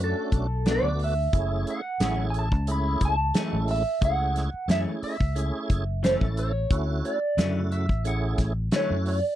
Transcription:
0.00 0.13 F#2 medium
0.00 0.47 A3 medium
0.00 0.47 C#4 medium
0.00 0.47 D4 medium
0.00 0.47 F#4 medium
0.00 0.70 A4 loud
0.32 0.78 B1 medium
0.32 kick medium
0.32 closed hi-hat soft
0.66 0.87 B2 medium
0.66 0.87 F#3 medium
0.66 1.14 A3 medium
0.66 0.88 A3 medium
0.66 1.14 B3 medium
0.66 1.14 D4 medium
0.66 0.88 D4 medium
0.66 1.14 F#4 medium
0.66 snare loud
0.66 closed hi-hat medium
0.71 1.03 D5 medium
0.83 1.27 D2 medium
0.99 open hi-hat medium
1.04 1.70 E5 medium
1.33 1.63 F#1 medium
1.33 1.81 A3 medium
1.33 1.81 C#4 medium
1.33 1.81 E4 medium
1.33 1.81 G#4 medium
1.33 kick loud
1.33 closed hi-hat medium
1.67 2.25 F#5 medium
1.67 closed hi-hat soft
2.00 2.52 A1 medium
2.00 2.22 F#2 medium
2.00 2.22 E3 medium
2.00 2.49 A3 medium
2.00 2.22 A3 medium
2.00 2.49 C#4 medium
2.00 2.22 C#4 medium
2.00 2.49 E4 medium
2.00 2.49 G#4 medium
2.00 snare medium
2.00 closed hi-hat medium
2.30 2.35 G#5 medium
2.30 closed hi-hat soft
2.39 2.71 A5 loud
2.52 2.95 C#2 medium
2.52 kick medium
2.67 3.16 A3 medium
2.67 3.16 C#4 medium
2.67 3.16 E4 medium
2.67 3.16 G#4 medium
2.67 closed hi-hat medium
2.72 3.04 B5 medium
3.01 3.31 C#2 medium
3.01 kick medium
3.01 closed hi-hat medium
3.05 3.71 A5 medium
3.34 3.56 F#2 medium
3.34 3.56 E3 medium
3.34 3.83 G#3 medium
3.34 3.83 A3 medium
3.34 3.56 A3 medium
3.34 3.83 C#4 medium
3.34 3.57 C#4 medium
3.34 3.83 E4 medium
3.34 snare loud
3.34 closed hi-hat medium
3.53 3.82 A1 medium
3.68 4.04 E5 medium
3.68 open hi-hat medium
4.01 4.47 C#2 medium
4.01 4.50 A3 medium
4.01 4.50 C#4 medium
4.01 4.50 E4 medium
4.01 4.50 G#4 medium
4.01 4.67 F#5 loud
4.01 kick loud
4.01 closed hi-hat medium
4.36 snare soft
4.36 closed hi-hat medium
4.54 muted fingered electric bass stroke soft
4.68 4.84 F#2 medium
4.68 4.90 F#2 medium
4.68 4.91 E3 medium
4.68 5.17 A3 medium
4.68 4.91 A3 medium
4.68 5.17 C#4 medium
4.68 4.91 C#4 medium
4.68 5.17 E4 medium
4.68 5.17 G#4 medium
4.68 4.80 E5 medium
4.68 snare loud
4.68 closed hi-hat medium
5.03 6.07 E5 medium
5.03 muted fingered electric bass stroke soft
5.03 open hi-hat medium
5.20 5.50 C#2 medium
5.20 kick medium
5.35 5.84 A3 medium
5.35 5.84 C#4 medium
5.35 5.84 E4 medium
5.35 5.84 G#4 medium
5.35 closed hi-hat medium
5.70 6.15 F#1 medium
5.70 kick medium
5.70 closed hi-hat medium
6.03 6.24 F#2 medium
6.03 6.24 E3 medium
6.03 6.25 A3 medium
6.03 6.52 A3 medium
6.03 6.25 C#4 loud
6.03 6.52 C#4 medium
6.03 6.52 E4 medium
6.03 6.52 A4 medium
6.03 6.13 C5 medium
6.03 snare loud
6.03 closed hi-hat medium
6.21 6.65 A1 medium
6.21 kick medium
6.37 7.01 C#5 medium
6.37 closed hi-hat medium
6.70 7.00 D2 medium
6.70 7.19 A3 medium
6.70 7.19 C#4 medium
6.70 7.19 E4 medium
6.70 7.19 F#4 medium
6.70 kick loud
6.70 closed hi-hat medium
7.05 7.68 D5 medium
7.05 closed hi-hat soft
7.37 7.91 F#2 medium
7.37 7.86 C#3 medium
7.37 7.59 D3 medium
7.37 7.59 F#3 medium
7.37 7.86 A3 medium
7.37 7.59 A3 medium
7.37 7.60 C#4 medium
7.37 7.86 E4 medium
7.37 7.86 F#4 medium
7.37 snare loud
7.37 closed hi-hat medium
7.72 8.03 E5 medium
7.72 closed hi-hat soft
7.89 8.33 A1 medium
7.89 kick medium
8.04 8.53 A3 medium
8.04 8.53 C#4 medium
8.04 8.53 E4 medium
8.04 8.53 G#4 medium
8.04 8.38 F#5 medium
8.04 closed hi-hat medium
8.38 8.68 A1 medium
8.38 kick medium
8.38 snare soft
8.38 closed hi-hat medium
8.71 8.93 D3 medium
8.71 8.93 F#3 medium
8.71 9.20 A3 medium
8.71 8.94 A3 medium
8.71 9.20 C#4 medium
8.71 8.94 C#4 medium
8.71 9.20 E4 medium
8.71 9.20 F#4 medium
8.71 snare medium
8.71 closed hi-hat medium
8.76 9.05 C#5 medium
8.90 9.20 F#2 medium
9.06 9.19 C#5 medium
9.06 open hi-hat medium
9.19 9.35 D5 medium

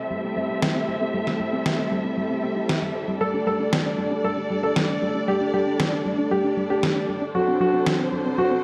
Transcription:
0.00 7.31 G3 medium
0.00 3.18 A3 medium
0.00 3.17 C4 medium
0.00 3.18 C4 medium
0.00 3.18 E4 medium
0.00 3.18 G4 medium
0.00 8.64 A4 medium
0.00 3.17 E5 medium
0.11 0.21 G3 medium
0.24 0.36 C4 medium
0.36 0.47 G3 medium
0.49 0.56 C4 medium
0.62 0.73 G3 medium
0.62 snare loud
0.75 0.88 C4 medium
0.88 0.99 G3 medium
1.01 1.07 C4 medium
1.14 1.25 G3 medium
1.27 1.39 C4 medium
1.27 snare soft
1.40 1.50 G3 medium
1.53 1.59 C4 medium
1.66 1.76 G3 medium
1.66 snare loud
1.79 1.91 C4 medium
1.92 2.02 G3 medium
2.05 2.11 C4 medium
2.18 2.28 G3 medium
2.30 2.42 C4 medium
2.43 2.54 C4 medium
2.56 2.63 E4 medium
2.69 2.82 G4 loud
2.69 snare loud
2.82 2.93 G3 medium
2.95 3.06 C5 medium
3.08 3.20 G3 medium
3.21 3.31 G3 medium
3.21 7.32 A3 medium
3.21 7.32 D4 medium
3.21 8.64 D4 medium
3.21 7.32 G4 medium
3.21 3.41 A4 medium
3.21 7.32 A4 medium
3.21 7.31 D5 medium
3.34 3.46 D4 medium
3.47 3.57 G3 medium
3.47 3.77 A4 medium
3.60 3.66 D4 medium
3.73 3.83 G3 medium
3.73 snare loud
3.85 3.98 D4 medium
3.98 4.09 G3 medium
4.11 4.18 D4 medium
4.24 4.35 G3 medium
4.24 4.55 A4 medium
4.37 4.50 D4 medium
4.50 4.61 G3 medium
4.63 4.69 D4 medium
4.63 5.18 A4 medium
4.76 4.87 G3 medium
4.76 snare loud
4.89 5.01 D4 medium
5.02 5.13 G3 medium
5.15 5.21 D4 medium
5.28 5.38 G3 medium
5.28 5.48 G4 medium
5.41 5.53 D4 medium
5.54 5.64 G3 medium
5.54 5.84 G4 medium
5.67 5.73 D4 medium
5.80 5.90 G3 medium
5.80 snare loud
5.93 6.05 D4 medium
6.05 6.16 G3 medium
6.18 6.25 D4 medium
6.31 6.42 G3 medium
6.31 6.62 G4 medium
6.44 6.57 D4 medium
6.57 6.68 G3 medium
6.70 6.76 D4 medium
6.70 7.24 G4 medium
6.83 6.93 G3 medium
6.83 snare loud
6.96 7.08 D4 medium
7.09 7.19 G3 medium
7.22 7.28 D4 medium
7.35 8.64 F#3 medium
7.35 7.45 F#3 medium
7.35 8.64 C4 medium
7.35 8.64 D4 medium
7.35 8.64 F#4 medium
7.35 7.55 F#4 medium
7.35 8.64 A4 medium
7.35 8.64 C5 medium
7.48 7.60 C4 medium
7.60 7.71 F#3 medium
7.60 7.91 F#4 medium
7.73 7.80 C4 medium
7.86 7.97 F#3 medium
7.86 snare loud
7.99 8.12 C4 medium
8.12 8.23 F#3 medium
8.25 8.32 C4 medium
8.38 8.49 F#3 medium
8.38 8.64 F#4 medium
8.51 8.63 C4 medium

